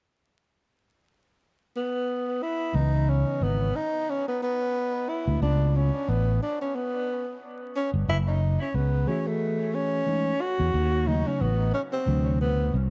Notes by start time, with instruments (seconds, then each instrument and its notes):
1.76 tenor saxophone B3
2.43 tenor saxophone E4
2.73 fretless electric bass C#2, tine electric piano C#3 E3 B3 D#4, tenor saxophone D#4
3.09 tenor saxophone C#4
3.41 fretless electric bass G#1, tenor saxophone B3
3.76 tenor saxophone D#4
4.10 tenor saxophone C#4
4.28 tenor saxophone B3
4.42 tenor saxophone B3
5.09 tenor saxophone E4
5.27 fretless electric bass D2
5.39 fretless electric bass C#2, tine electric piano C#3 A3 B3 F4, tenor saxophone D4
5.76 tenor saxophone C#4
6.08 fretless electric bass A1, tenor saxophone B3
6.42 tenor saxophone D4
6.61 tenor saxophone C#4
6.75 tenor saxophone B3
7.76 tenor saxophone C#4
7.94 fretless electric bass G1
8.08 fretless electric bass F#1, tenor saxophone E4
8.28 tenor saxophone D#4
8.61 tenor saxophone C#4
8.74 fretless electric bass C#2, tenor saxophone B3
9.06 tine electric piano E3 A3 F#4 G#4, tenor saxophone C#4
9.27 tenor saxophone A3
9.75 tenor saxophone C#4
10.06 tine electric piano E3 G#3 A3 D#4
10.41 tenor saxophone F#4
10.60 fretless electric bass E2
10.74 fretless electric bass D#2
11.06 tine electric piano C#3 F#3 A3 D#4, tenor saxophone D#4
11.27 tenor saxophone C#4
11.41 fretless electric bass A1, tenor saxophone B3
11.74 tenor saxophone C#4
11.93 tenor saxophone C4
12.05 fretless electric bass D2, tine electric piano C3 E3 F#3 D4
12.41 tenor saxophone B3
12.74 fretless electric bass C2